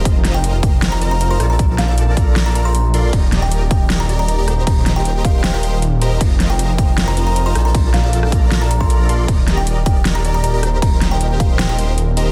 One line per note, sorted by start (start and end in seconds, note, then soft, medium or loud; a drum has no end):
0.00 1.37 A#4 medium
0.05 1.38 F1 medium
0.05 1.39 F3 medium
0.05 1.39 C4 medium
0.05 1.39 D#4 medium
0.05 0.99 F4 medium
0.05 kick loud
0.05 closed hi-hat medium
0.25 snare medium
0.25 closed hi-hat medium
0.34 0.46 G5 medium
0.44 closed hi-hat medium
0.63 0.90 G5 medium
0.63 kick loud
0.63 closed hi-hat medium
0.82 snare loud
0.82 closed hi-hat medium
0.92 1.04 A#5 medium
1.01 1.28 F4 medium
1.01 1.28 A#4 medium
1.01 1.28 C5 medium
1.01 1.28 D#5 medium
1.01 1.28 A#5 medium
1.01 closed hi-hat medium
1.11 1.17 A#5 medium
1.21 1.27 A#5 medium
1.21 closed hi-hat medium
1.31 1.38 F4 loud
1.31 1.38 A#4 medium
1.31 1.38 C5 medium
1.31 1.38 D#5 medium
1.31 1.38 A#5 loud
1.31 1.42 C6 medium
1.40 3.11 A#1 medium
1.40 4.64 A#3 medium
1.40 2.15 F4 medium
1.40 2.15 A4 medium
1.40 2.15 A#4 medium
1.40 2.15 D5 medium
1.40 2.15 A5 medium
1.40 cross-stick medium
1.40 closed hi-hat medium
1.50 1.61 A#5 medium
1.59 kick loud
1.59 closed hi-hat medium
1.78 1.85 F5 loud
1.78 snare medium
1.78 closed hi-hat medium
1.88 1.94 F5 medium
1.98 closed hi-hat medium
2.17 2.44 F4 medium
2.17 2.44 A4 medium
2.17 2.44 D5 medium
2.17 kick loud
2.17 closed hi-hat medium
2.36 snare loud
2.36 closed hi-hat medium
2.46 2.54 F4 medium
2.46 2.53 A4 medium
2.46 2.54 A#4 medium
2.46 2.54 D5 medium
2.46 2.53 A5 medium
2.46 2.52 A#5 medium
2.55 2.70 F4 medium
2.55 2.70 A4 medium
2.55 2.70 A#4 medium
2.55 2.70 D5 medium
2.55 2.70 A#5 medium
2.55 2.62 A#5 medium
2.55 closed hi-hat medium
2.65 3.17 C6 medium
2.75 closed hi-hat medium
2.94 3.11 F4 medium
2.94 3.11 A4 medium
2.94 3.11 A#4 medium
2.94 3.11 D5 medium
2.94 3.11 C6 loud
2.94 closed hi-hat medium
3.13 4.65 D#1 medium
3.13 6.18 D#3 medium
3.13 4.65 G4 medium
3.13 4.07 G4 loud
3.13 4.07 A#4 medium
3.13 kick loud
3.13 closed hi-hat medium
3.13 crash medium
3.32 snare medium
3.32 closed hi-hat medium
3.42 3.54 G5 medium
3.52 closed hi-hat medium
3.71 3.98 G5 medium
3.71 kick loud
3.71 closed hi-hat medium
3.90 snare loud
3.90 closed hi-hat medium
4.00 4.11 A#5 loud
4.09 4.36 G4 medium
4.09 4.36 A#4 medium
4.09 4.36 D5 medium
4.09 4.36 D#5 medium
4.09 4.36 A#5 medium
4.09 closed hi-hat medium
4.19 4.25 A#5 medium
4.28 4.35 A#5 medium
4.28 closed hi-hat medium
4.38 4.45 G4 loud
4.38 4.45 A#4 medium
4.38 4.45 D5 medium
4.38 4.45 D#5 medium
4.38 4.45 A#5 loud
4.48 5.22 G4 medium
4.48 5.22 A#4 medium
4.48 5.22 C5 medium
4.48 5.22 D#5 medium
4.48 5.22 A#5 medium
4.48 cross-stick medium
4.48 closed hi-hat medium
4.67 6.19 D#1 medium
4.67 6.19 C4 medium
4.67 7.53 A#4 medium
4.67 4.79 A#5 medium
4.67 kick loud
4.67 closed hi-hat medium
4.67 crash medium
4.86 snare medium
4.86 closed hi-hat medium
4.96 5.08 G5 medium
5.05 closed hi-hat medium
5.25 5.51 G4 medium
5.25 5.51 A#4 medium
5.25 5.51 C5 medium
5.25 5.51 D#5 medium
5.25 5.42 F5 medium
5.25 kick loud
5.25 closed hi-hat medium
5.44 5.50 G5 medium
5.44 snare loud
5.44 closed hi-hat medium
5.54 5.61 G4 medium
5.54 5.61 A#4 medium
5.54 5.61 C5 medium
5.54 5.61 D#5 medium
5.54 5.60 G5 medium
5.54 5.61 A#5 loud
5.63 5.77 G4 medium
5.63 5.77 A#4 medium
5.63 5.77 C5 medium
5.63 5.77 D#5 medium
5.63 5.77 C6 medium
5.63 closed hi-hat medium
5.82 closed hi-hat medium
6.01 6.19 G4 loud
6.01 6.19 A#4 medium
6.01 6.19 C5 medium
6.01 6.18 D#5 medium
6.01 6.19 A#5 loud
6.01 closed hi-hat medium
6.21 7.53 F1 medium
6.21 7.54 F3 medium
6.21 7.54 C4 medium
6.21 7.54 D#4 medium
6.21 7.15 F4 medium
6.21 kick loud
6.21 closed hi-hat medium
6.21 crash medium
6.40 snare medium
6.40 closed hi-hat medium
6.50 6.61 G5 loud
6.59 closed hi-hat medium
6.78 7.06 G5 medium
6.78 kick loud
6.78 closed hi-hat medium
6.98 snare loud
6.98 closed hi-hat medium
7.08 7.19 A#5 loud
7.17 7.44 F4 medium
7.17 7.44 A#4 medium
7.17 7.44 C5 medium
7.17 7.44 D#5 medium
7.17 7.44 A#5 medium
7.17 closed hi-hat medium
7.27 7.33 A#5 medium
7.36 7.42 A#5 medium
7.36 closed hi-hat medium
7.46 7.53 F4 loud
7.46 7.53 A#4 medium
7.46 7.53 C5 medium
7.46 7.53 D#5 medium
7.46 7.53 A#5 loud
7.46 7.57 C6 medium
7.55 9.27 A#1 medium
7.55 10.79 A#3 medium
7.55 8.30 F4 medium
7.55 8.30 A4 medium
7.55 8.30 A#4 medium
7.55 8.30 D5 medium
7.55 8.30 A5 medium
7.55 cross-stick medium
7.55 closed hi-hat medium
7.65 7.77 A#5 medium
7.75 kick loud
7.75 closed hi-hat medium
7.75 crash soft
7.94 8.00 F5 medium
7.94 snare medium
7.94 closed hi-hat medium
8.04 8.10 F5 medium
8.13 closed hi-hat medium
8.23 cross-stick medium
8.32 8.59 F4 medium
8.32 8.59 A4 medium
8.32 8.59 A#4 medium
8.32 8.59 D5 medium
8.32 8.59 A#5 loud
8.32 kick loud
8.32 closed hi-hat medium
8.52 snare loud
8.52 closed hi-hat medium
8.61 8.69 F4 medium
8.61 8.69 A4 medium
8.61 8.69 A#4 medium
8.61 8.69 D5 medium
8.61 8.69 A5 loud
8.61 8.67 A#5 medium
8.71 8.77 A#5 medium
8.71 closed hi-hat medium
8.81 9.07 F4 medium
8.81 9.07 A4 medium
8.81 9.07 A#4 medium
8.81 9.07 D5 medium
8.81 9.07 A#5 medium
8.81 9.32 C6 loud
8.81 kick medium
8.90 closed hi-hat medium
9.09 9.26 F4 medium
9.09 9.26 A4 medium
9.09 9.26 A#4 medium
9.09 9.26 D5 medium
9.09 9.26 C6 medium
9.09 closed hi-hat medium
9.28 10.80 D#1 medium
9.28 12.32 D#3 medium
9.28 10.22 G4 medium
9.28 10.81 G4 medium
9.28 10.22 A#4 medium
9.28 10.22 D5 medium
9.28 10.22 D#5 medium
9.28 10.22 A#5 loud
9.28 kick loud
9.28 closed hi-hat medium
9.28 crash medium
9.48 snare medium
9.48 closed hi-hat medium
9.58 9.69 G5 medium
9.67 closed hi-hat medium
9.86 10.13 G5 medium
9.86 kick loud
9.86 closed hi-hat medium
10.05 snare loud
10.05 closed hi-hat medium
10.15 10.27 A#5 medium
10.25 10.51 G4 medium
10.25 10.51 A#4 medium
10.25 10.51 D5 medium
10.25 10.51 D#5 medium
10.25 10.51 A#5 medium
10.25 closed hi-hat medium
10.34 10.40 A#5 medium
10.44 10.50 A#5 medium
10.44 closed hi-hat medium
10.54 10.61 G4 loud
10.54 10.61 A#4 medium
10.54 10.61 D5 medium
10.54 10.61 D#5 medium
10.54 10.61 A#5 loud
10.63 11.38 G4 medium
10.63 11.38 A#4 medium
10.63 11.38 C5 medium
10.63 11.38 D#5 medium
10.63 11.38 A#5 medium
10.63 cross-stick medium
10.63 closed hi-hat medium
10.82 12.32 D#1 medium
10.82 12.32 C4 medium
10.82 12.32 A#4 medium
10.82 10.94 A#5 medium
10.82 kick loud
10.82 closed hi-hat medium
10.82 crash soft
11.02 snare medium
11.02 closed hi-hat medium
11.11 11.23 G5 medium
11.21 closed hi-hat medium
11.40 11.67 G4 medium
11.40 11.67 A#4 medium
11.40 11.67 C5 medium
11.40 11.67 D#5 medium
11.40 11.57 F5 medium
11.40 11.67 C6 loud
11.40 kick loud
11.40 closed hi-hat medium
11.59 11.66 G5 medium
11.59 snare loud
11.59 closed hi-hat medium
11.69 11.77 G4 medium
11.69 11.77 A#4 medium
11.69 11.77 C5 medium
11.69 11.77 D#5 medium
11.69 11.75 G5 medium
11.69 11.77 A#5 medium
11.78 11.93 G4 medium
11.78 11.93 A#4 medium
11.78 11.93 C5 medium
11.78 11.93 D#5 medium
11.78 11.93 C6 medium
11.78 closed hi-hat medium
11.98 closed hi-hat medium
12.17 12.32 G4 loud
12.17 12.32 A#4 medium
12.17 12.32 C5 medium
12.17 12.32 D#5 medium
12.17 12.32 A#5 loud
12.17 closed hi-hat medium